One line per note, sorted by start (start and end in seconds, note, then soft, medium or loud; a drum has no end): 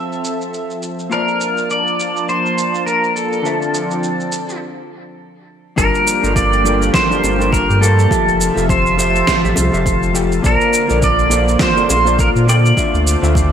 0.00 1.07 F3 medium
0.00 1.09 C4 medium
0.00 1.08 F4 medium
0.00 1.08 G4 medium
0.00 1.09 A4 medium
0.00 0.21 E5 medium
0.00 1.09 E5 medium
0.12 shaker soft
0.24 shaker medium
0.41 shaker soft
0.54 shaker soft
0.70 shaker soft
0.82 shaker medium
0.99 shaker soft
1.10 3.42 F3 medium
1.10 3.41 A#3 medium
1.10 3.42 A#3 medium
1.10 3.42 D4 medium
1.10 3.41 F4 medium
1.10 1.72 A#4 medium
1.10 3.42 C5 medium
1.10 4.58 A5 medium
1.10 3.42 A5 medium
1.10 shaker soft
1.14 3.43 D5 medium
1.28 shaker soft
1.41 shaker medium
1.57 shaker soft
1.70 2.29 D5 medium
1.70 shaker soft
1.87 shaker soft
2.00 shaker medium
2.16 shaker soft
2.29 2.83 C5 medium
2.29 shaker soft
2.46 shaker soft
2.58 shaker medium
2.74 shaker soft
2.86 3.16 A#4 medium
2.86 shaker soft
3.04 shaker soft
3.16 4.57 A4 medium
3.16 shaker medium
3.33 shaker soft
3.42 5.73 D3 medium
3.42 4.60 F3 medium
3.42 4.60 C4 medium
3.42 5.74 D4 medium
3.42 4.60 D4 medium
3.42 5.74 F4 medium
3.42 5.75 C5 medium
3.42 shaker soft
3.46 5.75 E5 medium
3.62 shaker soft
3.74 shaker medium
3.91 shaker soft
4.03 shaker soft
4.20 shaker soft
4.32 shaker medium
4.49 shaker soft
5.76 5.91 G1 loud
5.76 8.08 F3 medium
5.76 6.19 G3 medium
5.76 8.08 A#3 medium
5.76 6.19 D4 medium
5.76 8.08 D4 medium
5.76 6.19 F4 medium
5.76 8.08 G4 medium
5.76 6.38 A#4 loud
5.76 6.20 A#4 loud
5.76 6.19 A5 medium
5.76 kick loud
5.76 shaker soft
5.95 shaker soft
6.07 shaker medium
6.22 6.90 G1 loud
6.22 6.62 G3 medium
6.22 6.62 D4 medium
6.22 6.62 F4 medium
6.22 6.62 A4 medium
6.22 6.63 A#4 medium
6.22 shaker soft
6.36 6.94 D5 loud
6.36 kick loud
6.36 shaker soft
6.53 shaker soft
6.64 7.06 G3 medium
6.64 7.07 D4 medium
6.64 7.07 F4 medium
6.64 7.07 A4 medium
6.64 7.07 A#4 medium
6.64 shaker medium
6.82 shaker soft
6.94 7.54 C5 loud
6.94 kick loud
6.94 snare medium
6.94 shaker soft
7.10 7.36 G3 medium
7.10 7.36 D4 medium
7.10 7.36 F4 medium
7.10 7.37 A4 medium
7.10 7.37 A#4 medium
7.10 shaker soft
7.23 7.64 G1 medium
7.23 high bongo medium
7.23 shaker medium
7.39 7.78 G3 medium
7.39 7.78 D4 medium
7.39 7.79 F4 medium
7.39 7.79 A4 medium
7.39 7.79 A#4 medium
7.39 shaker soft
7.53 7.82 A#4 loud
7.53 kick loud
7.53 shaker soft
7.69 8.07 G2 medium
7.69 shaker soft
7.81 8.07 G3 medium
7.81 8.07 D4 medium
7.81 8.08 F4 medium
7.81 8.65 A4 medium
7.81 8.08 A4 medium
7.81 8.08 A#4 loud
7.81 shaker medium
7.99 shaker soft
8.09 10.42 C3 medium
8.09 8.52 F3 medium
8.09 8.52 F4 medium
8.09 13.52 F4 medium
8.09 8.52 G4 medium
8.09 8.53 A4 medium
8.09 10.42 E5 medium
8.09 8.53 E5 loud
8.09 12.73 A5 medium
8.09 kick loud
8.09 shaker soft
8.27 8.50 F1 medium
8.27 shaker soft
8.41 shaker medium
8.55 9.23 F1 loud
8.55 8.94 F3 medium
8.55 8.95 F4 medium
8.55 8.95 G4 medium
8.55 8.95 A4 medium
8.55 8.95 E5 loud
8.55 shaker soft
8.69 8.98 C5 medium
8.69 kick loud
8.69 shaker soft
8.86 shaker soft
8.97 9.39 F3 medium
8.97 9.39 F4 medium
8.97 9.40 G4 medium
8.97 9.40 A4 medium
8.97 10.11 C5 medium
8.97 9.40 E5 loud
8.97 shaker medium
9.15 shaker soft
9.27 kick loud
9.27 snare medium
9.27 shaker soft
9.43 9.54 A1 medium
9.43 9.69 F3 medium
9.43 9.69 F4 medium
9.43 9.70 G4 medium
9.43 9.70 A4 medium
9.43 9.70 E5 loud
9.43 shaker soft
9.56 9.70 C2 medium
9.56 high bongo medium
9.56 shaker medium
9.71 10.40 F1 medium
9.71 10.11 F3 medium
9.71 10.11 F4 medium
9.71 10.11 G4 medium
9.71 10.12 A4 medium
9.71 10.12 E5 loud
9.71 shaker soft
9.86 kick loud
9.86 shaker soft
10.03 shaker soft
10.13 10.40 F3 medium
10.13 10.40 F4 medium
10.13 10.41 G4 medium
10.13 10.41 A4 medium
10.13 10.41 G5 medium
10.13 shaker medium
10.32 shaker soft
10.42 10.57 A#1 medium
10.42 13.52 D3 medium
10.42 10.85 A#3 medium
10.42 12.75 A#3 medium
10.42 10.85 F4 medium
10.42 10.86 C5 medium
10.42 10.86 D5 loud
10.42 10.85 A5 medium
10.42 kick loud
10.42 shaker soft
10.46 11.05 A#4 loud
10.61 shaker soft
10.73 shaker medium
10.88 11.57 A#1 loud
10.88 11.27 A#3 medium
10.88 11.28 F4 medium
10.88 11.28 A4 medium
10.88 11.28 C5 medium
10.88 11.28 D5 loud
10.88 shaker soft
11.02 11.62 D5 loud
11.02 kick loud
11.02 shaker medium
11.19 shaker soft
11.30 11.72 A#3 medium
11.30 11.72 F4 medium
11.30 11.72 A4 medium
11.30 11.73 C5 medium
11.30 11.73 D5 loud
11.30 shaker medium
11.48 shaker soft
11.59 11.90 C5 loud
11.59 kick loud
11.59 snare medium
11.59 shaker soft
11.75 12.02 A#3 medium
11.75 12.02 F4 medium
11.75 12.02 A4 medium
11.75 12.03 C5 medium
11.75 12.03 D5 medium
11.75 shaker soft
11.89 12.30 A#1 medium
11.89 12.20 C5 medium
11.89 high bongo medium
11.89 shaker medium
12.05 12.44 A#3 medium
12.05 12.44 F4 medium
12.05 12.45 A4 medium
12.05 12.45 C5 medium
12.05 12.45 D5 loud
12.05 shaker soft
12.19 12.28 A#4 loud
12.19 kick loud
12.19 shaker soft
12.35 12.73 A#2 medium
12.35 shaker soft
12.47 12.73 A#3 medium
12.47 12.74 F4 medium
12.47 12.74 A4 medium
12.47 12.74 C5 medium
12.47 13.52 D5 medium
12.47 12.74 G5 loud
12.47 shaker medium
12.65 shaker soft
12.76 13.18 D3 medium
12.76 13.52 A3 medium
12.76 13.52 C4 medium
12.76 13.19 D4 medium
12.76 13.19 F4 medium
12.76 13.19 C5 medium
12.76 13.19 E5 loud
12.76 kick loud
12.76 shaker soft
12.94 13.16 D2 medium
12.94 shaker soft
13.07 shaker medium
13.22 13.52 D2 loud
13.22 13.52 D3 medium
13.22 13.52 D4 medium
13.22 13.52 F4 medium
13.22 13.52 C5 medium
13.22 13.52 E5 loud
13.22 shaker soft
13.35 kick loud
13.35 shaker soft